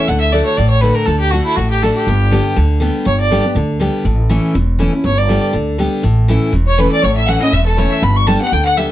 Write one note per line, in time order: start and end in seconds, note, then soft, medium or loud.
0.08 0.41 D2 medium
0.08 0.32 D3 medium
0.08 0.19 F#5 loud
0.20 0.34 E5 medium
0.33 0.57 D3 medium
0.33 0.57 A3 medium
0.33 0.57 D4 loud
0.33 0.58 F#4 loud
0.33 0.45 D5 medium
0.45 0.59 C#5 medium
0.57 0.90 A1 medium
0.57 1.05 A2 medium
0.57 0.69 D5 medium
0.70 0.82 C#5 medium
0.81 1.06 D3 medium
0.81 1.07 A3 medium
0.81 1.07 D4 medium
0.81 1.07 F#4 loud
0.81 0.96 B4 medium
0.94 1.07 A#4 medium
1.06 1.40 D2 medium
1.06 1.31 D3 medium
1.06 1.19 A4 medium
1.19 1.32 G4 medium
1.31 1.56 D3 medium
1.31 1.56 A3 medium
1.31 1.57 D4 medium
1.31 1.44 F#4 medium
1.31 1.57 F#4 medium
1.45 1.58 E4 medium
1.56 1.89 A1 medium
1.56 2.05 A2 medium
1.56 1.70 F#4 medium
1.70 1.84 G4 medium
1.83 2.06 D3 medium
1.83 2.06 A3 medium
1.83 2.07 D4 medium
1.83 2.07 F#4 medium
1.83 1.95 A4 medium
1.96 2.53 G4 medium
2.07 2.39 G1 medium
2.07 2.55 G2 medium
2.31 2.55 D3 medium
2.31 2.55 G3 medium
2.31 2.56 B3 loud
2.31 2.56 G4 medium
2.56 2.89 D2 medium
2.56 2.79 D3 loud
2.80 3.04 D3 medium
2.80 3.05 G3 medium
2.80 3.05 B3 medium
2.80 3.05 G4 medium
3.05 3.38 G1 medium
3.05 3.53 G2 medium
3.05 3.19 C#5 medium
3.20 3.43 D5 loud
3.31 3.43 D3 medium
3.31 3.44 G3 loud
3.31 3.44 B3 medium
3.31 3.42 G4 medium
3.43 3.56 B3 medium
3.43 3.55 G4 medium
3.55 3.88 D2 medium
3.55 3.78 D3 loud
3.79 4.04 D3 medium
3.79 4.04 G3 medium
3.79 4.04 B3 medium
3.79 4.05 G4 medium
4.05 4.37 A1 medium
4.05 4.53 A2 medium
4.29 4.54 E3 medium
4.29 4.54 A3 medium
4.29 4.54 C#4 loud
4.29 4.54 E4 loud
4.55 4.87 E1 medium
4.55 5.02 E2 loud
4.79 4.92 E3 medium
4.79 4.92 A3 medium
4.79 4.92 C#4 medium
4.79 4.91 E4 medium
4.93 5.05 C#4 soft
4.93 5.04 E4 medium
5.04 5.37 G1 medium
5.04 5.52 G2 medium
5.04 5.20 C#5 medium
5.18 5.43 D5 medium
5.28 5.51 D3 medium
5.28 5.53 G3 medium
5.28 5.53 B3 medium
5.28 5.54 G4 loud
5.53 5.86 D2 medium
5.53 5.77 D3 medium
5.78 6.02 D3 medium
5.78 6.03 G3 medium
5.78 6.03 B3 medium
5.78 6.03 G4 medium
6.03 6.36 A1 medium
6.03 6.51 A2 medium
6.28 6.52 E3 medium
6.28 6.53 A3 medium
6.28 6.53 C#4 medium
6.28 6.53 E4 loud
6.53 6.86 E1 medium
6.53 7.01 E2 medium
6.66 6.79 C#5 medium
6.66 6.81 C#5 medium
6.77 7.02 E3 medium
6.77 7.02 A3 medium
6.77 7.03 C#4 medium
6.77 7.03 E4 medium
6.77 6.91 B4 medium
6.92 7.04 D5 medium
6.92 7.05 D5 loud
7.02 7.36 A1 medium
7.02 7.51 A2 medium
7.02 7.15 C#5 medium
7.02 7.17 C#5 loud
7.15 7.28 E5 medium
7.15 7.30 E5 loud
7.26 7.40 E3 medium
7.26 7.41 A3 medium
7.26 7.41 C#4 medium
7.26 7.39 E4 loud
7.26 7.39 F#5 medium
7.26 7.41 F#5 loud
7.40 7.53 C#4 medium
7.40 7.52 E4 medium
7.40 7.53 D#5 medium
7.40 7.55 D#5 loud
7.52 7.85 E1 medium
7.52 8.00 E2 medium
7.52 7.64 E5 medium
7.52 7.66 E5 medium
7.65 7.78 A4 medium
7.65 7.80 A4 medium
7.77 8.01 E3 medium
7.77 8.02 A3 loud
7.77 8.02 C#4 medium
7.77 8.02 E4 medium
7.77 7.92 C#5 medium
7.77 7.94 C#5 medium
7.90 8.05 E5 medium
7.90 8.05 E5 loud
8.02 8.35 G1 medium
8.02 8.50 G2 medium
8.02 8.18 B5 medium
8.16 8.29 C#6 loud
8.27 8.40 D3 loud
8.27 8.40 G3 loud
8.27 8.40 B3 loud
8.27 8.39 G4 medium
8.27 8.40 A5 medium
8.27 8.41 A5 medium
8.40 8.53 B3 soft
8.40 8.52 G4 medium
8.40 8.54 F#5 loud
8.40 8.54 F#5 medium
8.52 8.84 D2 medium
8.52 8.76 D3 medium
8.52 8.66 G5 medium
8.52 8.64 G5 loud
8.65 8.79 F#5 loud
8.65 8.79 F#5 medium
8.77 8.90 D3 medium
8.77 8.90 G3 medium
8.77 8.90 B3 medium
8.77 8.89 G4 medium
8.77 8.90 E5 medium